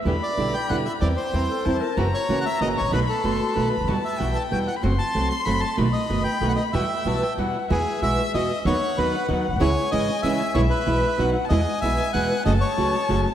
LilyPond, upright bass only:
\new Staff \with { instrumentName = "Upright bass" } { \clef bass \time 3/4 \key e \minor \tempo 4 = 189 e,16. r8 r32 b,,16. r8 r32 e,16. r8 r32 | e,16. r8 r32 e,16. r8 r32 e,16. r8 r32 | fis,,16. r8 r32 cis,16. r8 r32 fis,,16. r16 gis,,32 a,,32 ais,,32 | b,,16. r8 r32 fis,,16. r8 r32 b,,16. r16 cis,32 d,32 dis,32 |
e,16. r8 r32 b,,16. r8 r32 e,16. r8 r32 | fis,,16. r8 r32 c,16. r8 r32 fis,,16. r8 r32 | b,,16. r8 r32 fis,,16. r8 r32 b,,16. r8 r32 | e,16. r8 r32 b,,16. r8 r32 e,16. r8 r32 |
\key e \major e,16. r8 r32 b,,16. r8 r32 e,16. r8 r32 | dis,16. r8 r32 dis,16. r8 r32 dis,16. r16 ais,,32 b,,32 c,32 | cis,16. r8 r32 gis,,16. r8 r32 cis,16. r8 r32 | b,,16. r8 r32 b,,16. r8 r32 b,,16. r8 r32 |
e,16. r8 r32 b,,16. r8 r32 e,16. r8 r32 | fis,,16. r8 r32 cis,16. r8 r32 fis,,16. r8 r32 | }